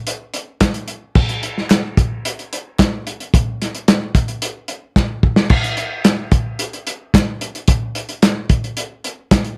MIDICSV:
0, 0, Header, 1, 2, 480
1, 0, Start_track
1, 0, Tempo, 543971
1, 1020, Time_signature, 4, 2, 24, 8
1, 8450, End_track
2, 0, Start_track
2, 0, Title_t, "Drums"
2, 59, Note_on_c, 9, 42, 97
2, 147, Note_off_c, 9, 42, 0
2, 296, Note_on_c, 9, 42, 80
2, 385, Note_off_c, 9, 42, 0
2, 533, Note_on_c, 9, 42, 101
2, 536, Note_on_c, 9, 38, 121
2, 539, Note_on_c, 9, 36, 88
2, 545, Note_on_c, 9, 39, 90
2, 622, Note_off_c, 9, 42, 0
2, 624, Note_off_c, 9, 38, 0
2, 627, Note_off_c, 9, 36, 0
2, 633, Note_off_c, 9, 39, 0
2, 654, Note_on_c, 9, 42, 47
2, 742, Note_off_c, 9, 42, 0
2, 773, Note_on_c, 9, 42, 68
2, 862, Note_off_c, 9, 42, 0
2, 1015, Note_on_c, 9, 49, 101
2, 1019, Note_on_c, 9, 36, 115
2, 1103, Note_off_c, 9, 49, 0
2, 1107, Note_off_c, 9, 36, 0
2, 1138, Note_on_c, 9, 42, 54
2, 1226, Note_off_c, 9, 42, 0
2, 1261, Note_on_c, 9, 42, 76
2, 1349, Note_off_c, 9, 42, 0
2, 1391, Note_on_c, 9, 38, 35
2, 1479, Note_off_c, 9, 38, 0
2, 1501, Note_on_c, 9, 39, 101
2, 1504, Note_on_c, 9, 42, 108
2, 1507, Note_on_c, 9, 38, 106
2, 1590, Note_off_c, 9, 39, 0
2, 1593, Note_off_c, 9, 42, 0
2, 1595, Note_off_c, 9, 38, 0
2, 1742, Note_on_c, 9, 36, 98
2, 1742, Note_on_c, 9, 42, 77
2, 1830, Note_off_c, 9, 36, 0
2, 1830, Note_off_c, 9, 42, 0
2, 1987, Note_on_c, 9, 42, 113
2, 2075, Note_off_c, 9, 42, 0
2, 2109, Note_on_c, 9, 42, 48
2, 2198, Note_off_c, 9, 42, 0
2, 2230, Note_on_c, 9, 42, 88
2, 2318, Note_off_c, 9, 42, 0
2, 2464, Note_on_c, 9, 36, 92
2, 2465, Note_on_c, 9, 39, 95
2, 2466, Note_on_c, 9, 42, 106
2, 2469, Note_on_c, 9, 38, 123
2, 2552, Note_off_c, 9, 36, 0
2, 2553, Note_off_c, 9, 39, 0
2, 2554, Note_off_c, 9, 42, 0
2, 2557, Note_off_c, 9, 38, 0
2, 2706, Note_on_c, 9, 42, 81
2, 2795, Note_off_c, 9, 42, 0
2, 2827, Note_on_c, 9, 42, 52
2, 2915, Note_off_c, 9, 42, 0
2, 2945, Note_on_c, 9, 36, 116
2, 2947, Note_on_c, 9, 42, 108
2, 3033, Note_off_c, 9, 36, 0
2, 3035, Note_off_c, 9, 42, 0
2, 3191, Note_on_c, 9, 42, 77
2, 3193, Note_on_c, 9, 38, 34
2, 3279, Note_off_c, 9, 42, 0
2, 3282, Note_off_c, 9, 38, 0
2, 3305, Note_on_c, 9, 42, 53
2, 3394, Note_off_c, 9, 42, 0
2, 3423, Note_on_c, 9, 42, 99
2, 3426, Note_on_c, 9, 38, 117
2, 3431, Note_on_c, 9, 39, 98
2, 3511, Note_off_c, 9, 42, 0
2, 3514, Note_off_c, 9, 38, 0
2, 3520, Note_off_c, 9, 39, 0
2, 3659, Note_on_c, 9, 42, 78
2, 3660, Note_on_c, 9, 36, 92
2, 3673, Note_on_c, 9, 39, 61
2, 3747, Note_off_c, 9, 42, 0
2, 3748, Note_off_c, 9, 36, 0
2, 3762, Note_off_c, 9, 39, 0
2, 3778, Note_on_c, 9, 42, 49
2, 3866, Note_off_c, 9, 42, 0
2, 3900, Note_on_c, 9, 42, 100
2, 3988, Note_off_c, 9, 42, 0
2, 4131, Note_on_c, 9, 42, 82
2, 4219, Note_off_c, 9, 42, 0
2, 4377, Note_on_c, 9, 36, 93
2, 4377, Note_on_c, 9, 38, 65
2, 4387, Note_on_c, 9, 39, 89
2, 4465, Note_off_c, 9, 36, 0
2, 4465, Note_off_c, 9, 38, 0
2, 4475, Note_off_c, 9, 39, 0
2, 4616, Note_on_c, 9, 36, 89
2, 4705, Note_off_c, 9, 36, 0
2, 4732, Note_on_c, 9, 38, 88
2, 4821, Note_off_c, 9, 38, 0
2, 4849, Note_on_c, 9, 57, 112
2, 4855, Note_on_c, 9, 36, 126
2, 4937, Note_off_c, 9, 57, 0
2, 4943, Note_off_c, 9, 36, 0
2, 4977, Note_on_c, 9, 42, 52
2, 5065, Note_off_c, 9, 42, 0
2, 5091, Note_on_c, 9, 42, 72
2, 5179, Note_off_c, 9, 42, 0
2, 5334, Note_on_c, 9, 42, 96
2, 5337, Note_on_c, 9, 38, 100
2, 5342, Note_on_c, 9, 39, 110
2, 5422, Note_off_c, 9, 42, 0
2, 5425, Note_off_c, 9, 38, 0
2, 5431, Note_off_c, 9, 39, 0
2, 5573, Note_on_c, 9, 42, 80
2, 5575, Note_on_c, 9, 36, 95
2, 5661, Note_off_c, 9, 42, 0
2, 5663, Note_off_c, 9, 36, 0
2, 5815, Note_on_c, 9, 42, 99
2, 5904, Note_off_c, 9, 42, 0
2, 5941, Note_on_c, 9, 42, 47
2, 6030, Note_off_c, 9, 42, 0
2, 6059, Note_on_c, 9, 42, 93
2, 6147, Note_off_c, 9, 42, 0
2, 6299, Note_on_c, 9, 36, 92
2, 6305, Note_on_c, 9, 42, 124
2, 6307, Note_on_c, 9, 38, 115
2, 6311, Note_on_c, 9, 39, 100
2, 6388, Note_off_c, 9, 36, 0
2, 6393, Note_off_c, 9, 42, 0
2, 6396, Note_off_c, 9, 38, 0
2, 6399, Note_off_c, 9, 39, 0
2, 6540, Note_on_c, 9, 42, 79
2, 6628, Note_off_c, 9, 42, 0
2, 6662, Note_on_c, 9, 42, 50
2, 6750, Note_off_c, 9, 42, 0
2, 6773, Note_on_c, 9, 42, 120
2, 6777, Note_on_c, 9, 36, 120
2, 6861, Note_off_c, 9, 42, 0
2, 6866, Note_off_c, 9, 36, 0
2, 7016, Note_on_c, 9, 42, 81
2, 7104, Note_off_c, 9, 42, 0
2, 7136, Note_on_c, 9, 42, 55
2, 7225, Note_off_c, 9, 42, 0
2, 7257, Note_on_c, 9, 42, 103
2, 7260, Note_on_c, 9, 38, 110
2, 7266, Note_on_c, 9, 39, 103
2, 7345, Note_off_c, 9, 42, 0
2, 7348, Note_off_c, 9, 38, 0
2, 7355, Note_off_c, 9, 39, 0
2, 7496, Note_on_c, 9, 42, 77
2, 7498, Note_on_c, 9, 36, 96
2, 7584, Note_off_c, 9, 42, 0
2, 7586, Note_off_c, 9, 36, 0
2, 7625, Note_on_c, 9, 42, 45
2, 7713, Note_off_c, 9, 42, 0
2, 7737, Note_on_c, 9, 42, 96
2, 7825, Note_off_c, 9, 42, 0
2, 7980, Note_on_c, 9, 42, 78
2, 8068, Note_off_c, 9, 42, 0
2, 8216, Note_on_c, 9, 42, 105
2, 8218, Note_on_c, 9, 36, 90
2, 8219, Note_on_c, 9, 38, 121
2, 8223, Note_on_c, 9, 39, 101
2, 8305, Note_off_c, 9, 42, 0
2, 8306, Note_off_c, 9, 36, 0
2, 8307, Note_off_c, 9, 38, 0
2, 8312, Note_off_c, 9, 39, 0
2, 8335, Note_on_c, 9, 42, 46
2, 8423, Note_off_c, 9, 42, 0
2, 8450, End_track
0, 0, End_of_file